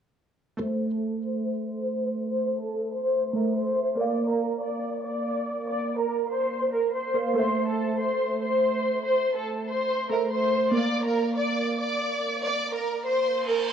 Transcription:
0.57 synth keys A3 A4 C5, violin section C5 C6
0.63 synth keys E5
0.91 violin section A4 A5
1.23 violin section C5 C6
1.66 violin section C5 C6
2.29 violin section C5 C6
2.60 violin section A4 A5
2.93 violin section C5 C6
3.33 synth keys A3 A4 C5 E5, violin section A#4 A#5
3.55 violin section C5 C6
3.95 synth keys A#3 A#4 D5, violin section D5 D6
4.01 synth keys F5
4.29 violin section A#4 A#5
4.61 violin section D5 D6
5.03 violin section D5 D6
5.67 violin section D5 D6
5.98 violin section A#4 A#5
6.30 violin section C5 C6
6.72 violin section A#4 A#5
6.94 violin section C5 C6
7.14 synth keys A#3 A#4 D5 F5
7.33 synth keys A3 A4 C5, violin section C5
7.37 synth keys E5, violin section C6
7.67 violin section A4 A5
8.00 violin section C5 C6
8.42 violin section C5 C6
9.05 violin section C5 C6
9.36 violin section A4 A5
9.69 violin section C5 C6
10.09 synth keys A3 A4 C5 E5, violin section A#4 A#5
10.31 violin section C5 C6
10.71 synth keys A#3 A#4 D5, violin section D5 D6
10.77 synth keys F5
11.05 violin section A#4 A#5
11.37 violin section D5 D6
11.79 violin section D5 D6
12.43 violin section D5 D6
12.74 violin section A#4 A#5
13.07 violin section C5 C6
13.28 reverse cymbal
13.49 violin section A#4 A#5

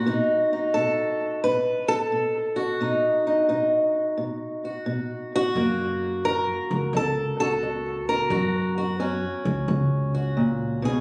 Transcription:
Already playing: steel-string acoustic guitar F#4
0.06 steel-string acoustic guitar B2 D#4
0.53 steel-string acoustic guitar D#4
0.74 steel-string acoustic guitar B2 A4
1.44 steel-string acoustic guitar B2 B4
1.88 steel-string acoustic guitar A4
2.12 steel-string acoustic guitar B2
2.56 steel-string acoustic guitar F#4
2.81 steel-string acoustic guitar B2 D#4
3.27 steel-string acoustic guitar D#4
3.49 steel-string acoustic guitar B2 D#4
4.18 steel-string acoustic guitar B2
4.65 steel-string acoustic guitar F#4
4.86 steel-string acoustic guitar B2
5.36 steel-string acoustic guitar F#4
5.55 upright bass F#2, steel-string acoustic guitar F#2 A#3
6.25 steel-string acoustic guitar F#2 A#4
6.71 upright bass C#2
6.93 upright bass C#2, steel-string acoustic guitar F#2 A4
7.40 steel-string acoustic guitar F#4 A4
7.63 steel-string acoustic guitar F#2
8.09 steel-string acoustic guitar A#4
8.30 upright bass F#2, steel-string acoustic guitar F#2 F#4
8.78 steel-string acoustic guitar F#4
9.00 steel-string acoustic guitar F#2 C#4
9.45 upright bass C#2
9.68 upright bass C#2, steel-string acoustic guitar F#2
10.14 steel-string acoustic guitar F#4
10.37 steel-string acoustic guitar A#2
10.82 steel-string acoustic guitar B2 G#4

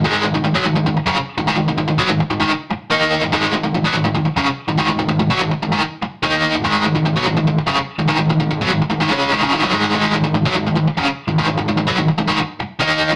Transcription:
0.04 overdriven electric guitar G#2 D#3 G#3
0.23 overdriven electric guitar G#2 D#3
0.34 overdriven electric guitar G#2 D#3
0.44 overdriven electric guitar G#2 D#3
0.54 overdriven electric guitar B2 F#3
0.65 overdriven electric guitar G#2 D#3
0.75 overdriven electric guitar G#2 D#3
0.86 overdriven electric guitar G#2 D#3
0.97 muted overdriven electric guitar stroke
1.06 overdriven electric guitar F#2 C#3
1.17 muted overdriven electric guitar stroke
1.38 overdriven electric guitar G#2 D#3
1.48 overdriven electric guitar G#2 D#3
1.57 overdriven electric guitar G#2 D#3
1.68 overdriven electric guitar G#2 D#3
1.78 overdriven electric guitar G#2 D#3
1.88 overdriven electric guitar G#2 D#3
1.98 overdriven electric guitar B2 F#3
2.09 overdriven electric guitar G#2 D#3
2.20 muted overdriven electric guitar stroke
2.30 overdriven electric guitar G#2 D#3
2.40 overdriven electric guitar G#2 D#3
2.51 muted overdriven electric guitar stroke
2.70 muted overdriven electric guitar stroke
2.90 overdriven electric guitar D#3 A#3 D#4
3.22 overdriven electric guitar G#2 D#3
3.32 overdriven electric guitar G#2 D#3 G#3
3.53 overdriven electric guitar G#2 D#3
3.64 overdriven electric guitar G#2 D#3
3.75 overdriven electric guitar G#2 D#3
3.85 overdriven electric guitar B2 F#3
3.95 overdriven electric guitar G#2 D#3
4.05 overdriven electric guitar G#2 D#3
4.15 overdriven electric guitar G#2 D#3
4.26 muted overdriven electric guitar stroke
4.37 overdriven electric guitar F#2 C#3
4.47 muted overdriven electric guitar stroke
4.68 overdriven electric guitar G#2 D#3
4.77 overdriven electric guitar G#2 D#3
4.89 overdriven electric guitar G#2 D#3
4.99 overdriven electric guitar G#2 D#3
5.08 overdriven electric guitar G#2 D#3
5.19 overdriven electric guitar G#2 D#3
5.30 overdriven electric guitar B2 F#3
5.41 overdriven electric guitar G#2 D#3
5.52 muted overdriven electric guitar stroke
5.63 overdriven electric guitar G#2 D#3
5.72 overdriven electric guitar G#2 D#3
5.82 muted overdriven electric guitar stroke
6.03 muted overdriven electric guitar stroke
6.23 overdriven electric guitar D#3 A#3 D#4
6.55 overdriven electric guitar G#2 D#3
6.64 overdriven electric guitar G#2 D#3 G#3
6.85 overdriven electric guitar G#2 D#3
6.95 overdriven electric guitar G#2 D#3
7.05 overdriven electric guitar G#2 D#3
7.16 overdriven electric guitar B2 F#3
7.26 overdriven electric guitar G#2 D#3
7.37 overdriven electric guitar G#2 D#3
7.47 overdriven electric guitar G#2 D#3
7.58 muted overdriven electric guitar stroke
7.67 overdriven electric guitar F#2 C#3
7.78 muted overdriven electric guitar stroke
7.99 overdriven electric guitar G#2 D#3
8.08 overdriven electric guitar G#2 D#3
8.18 overdriven electric guitar G#2 D#3
8.29 overdriven electric guitar G#2 D#3
8.40 overdriven electric guitar G#2 D#3
8.51 overdriven electric guitar G#2 D#3
8.61 overdriven electric guitar B2 F#3
8.71 overdriven electric guitar G#2 D#3
8.82 muted overdriven electric guitar stroke
8.90 overdriven electric guitar G#2 D#3
9.01 overdriven electric guitar G#2 D#3
9.12 overdriven electric guitar C#3 G#3 C#4
9.32 overdriven electric guitar G#2 D#3
9.43 overdriven electric guitar F#2 C#3
9.53 overdriven electric guitar G#2 D#3
9.63 overdriven electric guitar B2 F#3
9.73 overdriven electric guitar G#2 D#3 G#3
9.94 overdriven electric guitar G#2 D#3 G#3
10.14 overdriven electric guitar G#2 D#3
10.24 overdriven electric guitar G#2 D#3
10.34 overdriven electric guitar G#2 D#3
10.45 overdriven electric guitar B2 F#3
10.55 overdriven electric guitar G#2 D#3
10.66 overdriven electric guitar G#2 D#3
10.75 overdriven electric guitar G#2 D#3
10.87 muted overdriven electric guitar stroke
10.97 overdriven electric guitar F#2 C#3
11.07 muted overdriven electric guitar stroke
11.28 overdriven electric guitar G#2 D#3
11.38 overdriven electric guitar G#2 D#3
11.48 overdriven electric guitar G#2 D#3
11.57 overdriven electric guitar G#2 D#3
11.68 overdriven electric guitar G#2 D#3
11.77 overdriven electric guitar G#2 D#3
11.87 overdriven electric guitar B2 F#3
11.98 overdriven electric guitar G#2 D#3
12.08 muted overdriven electric guitar stroke
12.18 overdriven electric guitar G#2 D#3
12.28 overdriven electric guitar G#2 D#3
12.41 muted overdriven electric guitar stroke
12.60 muted overdriven electric guitar stroke
12.79 overdriven electric guitar D#3 A#3 D#4
13.11 overdriven electric guitar G#2 D#3

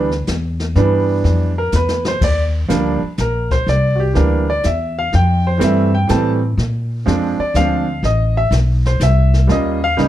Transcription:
Already playing: upright bass D2
0.11 snare
0.27 upright bass E2, snare, hi-hat pedal
0.60 snare
0.76 upright bass G2, grand piano E3 G3 B3 D4, brush sweep, snare
1.24 upright bass F2, snare
1.58 grand piano A#4
1.72 upright bass E2, grand piano B4, snare, hi-hat pedal
1.89 snare
2.05 grand piano C5, snare
2.21 upright bass D#2, grand piano D5, brush sweep, kick, snare, crash
2.68 upright bass D2, grand piano F3 G3 A#3 D4, snare, hi-hat pedal
3.02 muted upright bass stroke
3.17 upright bass A#1, grand piano A#4, snare, hi-hat pedal
3.51 grand piano C5, kick, snare
3.67 upright bass C2, grand piano D5, brush sweep, snare
3.95 grand piano F#4
4.00 grand piano G4
4.14 upright bass D2, grand piano E3 G3 A#3 D4 A#4, snare
4.50 grand piano D5
4.63 upright bass E2, grand piano E5, snare, hi-hat pedal
4.99 grand piano F5
5.12 upright bass F2, grand piano G5, brush sweep, snare
5.47 grand piano C5
5.58 upright bass G2, grand piano E3 G3 A3 C4, snare, hi-hat pedal
5.64 grand piano E5
5.95 grand piano G5
6.08 upright bass A2, grand piano E3 G3 A3 C4 A5, snare, hi-hat pedal
6.57 upright bass A#2, brush sweep, snare
7.06 upright bass F2, grand piano F3 G#3 C4 D4, snare
7.39 grand piano D5, muted upright bass stroke
7.54 upright bass D2, grand piano F3 G#3 C4 D4 F5, snare, hi-hat pedal
8.03 upright bass A1, grand piano D#5, brush sweep, snare
8.37 grand piano E5
8.51 upright bass B1, snare, hi-hat pedal
8.86 grand piano C5, snare
9.00 upright bass C2, grand piano E5, snare, hi-hat pedal
9.34 snare
9.47 upright bass D#2, grand piano G3 A#3 C#4 F4, brush sweep, snare
9.52 grand piano D#5
9.84 grand piano F5
9.97 upright bass C#2, grand piano G3 A#3 C#4 D#4, snare

